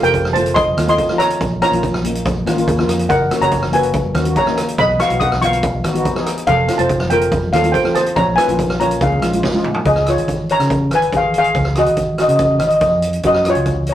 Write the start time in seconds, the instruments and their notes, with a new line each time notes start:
0.03 fingered electric bass F1, steel pan A3 C4 G4 A#4 G5, closed hi-hat
0.14 kick, closed hi-hat
0.25 cross-stick, high conga
0.33 steel pan A3 C4 C5 A5, closed hi-hat, low conga
0.37 steel pan F4
0.46 closed hi-hat
0.54 steel pan D#5 C6, kick, closed hi-hat, high conga
0.67 high conga
0.77 fingered electric bass D#2, steel pan A3 C4 F4, cross-stick, closed hi-hat
0.87 steel pan A3 C4 F4 D#5 C6, closed hi-hat
0.98 kick, closed hi-hat
1.09 steel pan A3 C4 F4, cross-stick
1.18 steel pan C#5 A#5, cross-stick, closed hi-hat, low conga
1.30 closed hi-hat
1.41 fingered electric bass A#1, kick, closed hi-hat
1.61 steel pan A#3 C#4 F4 C#5 A#5, cross-stick, closed hi-hat
1.72 fingered electric bass A#1, steel pan A#3 C#4 F4, closed hi-hat, low conga
1.83 kick, closed hi-hat
1.94 cross-stick, high conga
2.03 steel pan A#3 C#4 D#4, closed hi-hat, low conga
2.15 closed hi-hat, high conga
2.26 kick, closed hi-hat, high conga
2.37 high conga
2.45 fingered electric bass G#1, steel pan A#3 C#4 F4, cross-stick, closed hi-hat
2.56 steel pan A#3 C#4 F4, closed hi-hat
2.67 fingered electric bass D#2, steel pan C#5, kick, closed hi-hat
2.79 steel pan A#3 C#4 F4, cross-stick
2.88 fingered electric bass F2, cross-stick, closed hi-hat, low conga
2.99 closed hi-hat
3.09 fingered electric bass F#1, steel pan A#4 F#5, kick, closed hi-hat
3.31 steel pan A#3 C#4 F#4, cross-stick, closed hi-hat
3.40 fingered electric bass F#1, steel pan A#3 C#4 F#4 C#5 A#5, closed hi-hat
3.51 kick, closed hi-hat
3.62 cross-stick, high conga
3.72 steel pan A#3 C#4 F#4 B4 G#5, closed hi-hat, low conga
3.83 closed hi-hat
3.93 kick, closed hi-hat, high conga
4.05 high conga
4.15 fingered electric bass D#2, steel pan A#3 C#4 F#4, cross-stick, closed hi-hat
4.25 steel pan A#3 C#4 F#4, closed hi-hat
4.36 steel pan C#5 A#5, kick, closed hi-hat
4.47 steel pan A#3 C#4 D#4, cross-stick
4.57 cross-stick, closed hi-hat, low conga
4.68 closed hi-hat
4.78 fingered electric bass B1, steel pan D#5 B5, kick, closed hi-hat
4.99 steel pan B3 D#4 F#4 F5 C#6, cross-stick, closed hi-hat
5.10 fingered electric bass B1, steel pan B3 D#4 F#4, closed hi-hat
5.20 steel pan F#5 D#6, kick, closed hi-hat
5.32 cross-stick, high conga
5.41 steel pan B3 D#4 F4 F5 C#6, closed hi-hat, low conga
5.53 closed hi-hat
5.63 kick, closed hi-hat, high conga
5.84 fingered electric bass G#1, steel pan B3 D#4 F#4, cross-stick, closed hi-hat
5.94 steel pan B3 D#4 F#4, closed hi-hat
6.05 kick, closed hi-hat
6.16 steel pan B3 D#4 G#4, cross-stick
6.26 cross-stick, closed hi-hat
6.37 closed hi-hat
6.47 fingered electric bass F1, steel pan A4 F5, kick, closed hi-hat
6.67 steel pan A3 C4 F4, cross-stick, closed hi-hat
6.78 fingered electric bass F1, steel pan A3 C4 F4 C5 A5, closed hi-hat
6.89 kick, closed hi-hat
7.00 cross-stick, high conga
7.10 steel pan A3 C4 F4 A#4 G5, closed hi-hat, low conga
7.21 closed hi-hat
7.32 kick, closed hi-hat, high conga
7.44 high conga
7.52 fingered electric bass D#2, steel pan A3 C4 F4 A4 F5, cross-stick, closed hi-hat
7.63 steel pan A3 C4 F4, closed hi-hat
7.72 steel pan C5 G5, kick, closed hi-hat
7.84 steel pan A3 C4 F4, cross-stick
7.95 steel pan C5 A5, cross-stick, closed hi-hat, low conga
8.06 closed hi-hat
8.16 fingered electric bass A#1, steel pan C#5 A#5, kick, closed hi-hat
8.36 steel pan A#3 C#4 F4 B4 G#5, cross-stick, closed hi-hat, high conga
8.47 fingered electric bass A#1, steel pan A#3 C#4 F4, closed hi-hat, low conga
8.59 kick, closed hi-hat
8.70 cross-stick, high conga
8.80 steel pan A#3 C#4 F4 C#5 A#5, closed hi-hat, low conga
8.91 closed hi-hat
9.01 fingered electric bass C#2, steel pan G#4 F5, kick, closed hi-hat, high conga
9.12 high conga
9.21 fingered electric bass A#1, steel pan G#3 C#4 F4, cross-stick, closed hi-hat
9.33 steel pan G#3 C#4 F4, closed hi-hat
9.43 kick, snare
9.54 steel pan G#3 C#4 F4
9.64 mid tom, low conga
9.74 floor tom
9.85 fingered electric bass C#2, steel pan G#4 D#5, kick, closed hi-hat
9.96 cross-stick
10.06 steel pan F4 C#5, cross-stick, closed hi-hat
10.17 fingered electric bass G#1, closed hi-hat
10.28 kick, closed hi-hat
10.49 steel pan C#5 A#5, closed hi-hat
10.59 fingered electric bass C#3, cross-stick, closed hi-hat
10.70 kick, closed hi-hat
10.91 fingered electric bass G#1, steel pan B4, cross-stick, closed hi-hat
10.95 steel pan G#5
11.02 closed hi-hat
11.13 fingered electric bass G#1, steel pan G#4, kick, closed hi-hat
11.17 steel pan F5
11.34 closed hi-hat
11.38 steel pan G#4 F5
11.44 closed hi-hat
11.55 fingered electric bass C#2, kick, closed hi-hat
11.65 cross-stick
11.75 steel pan F#4 D#5, cross-stick, closed hi-hat
11.86 fingered electric bass G#1, closed hi-hat
11.97 kick, closed hi-hat
12.18 steel pan F#4 D#5, cross-stick, closed hi-hat
12.28 fingered electric bass C#3, steel pan D#5, closed hi-hat
12.36 steel pan D#5, kick, closed hi-hat
12.43 steel pan D#5
12.51 steel pan D#5
12.59 fingered electric bass G#1, steel pan D#5, cross-stick, closed hi-hat
12.67 steel pan D#5, closed hi-hat
12.74 steel pan D#5
12.81 fingered electric bass F2, steel pan D#5, kick, closed hi-hat
12.88 steel pan D#5
13.02 closed hi-hat
13.13 closed hi-hat
13.23 fingered electric bass F#2, steel pan F#4 D#5, kick, closed hi-hat
13.34 cross-stick
13.45 steel pan F4, cross-stick, closed hi-hat
13.50 steel pan C#5
13.55 fingered electric bass C#2, closed hi-hat
13.66 kick, closed hi-hat
13.87 steel pan C#5, closed hi-hat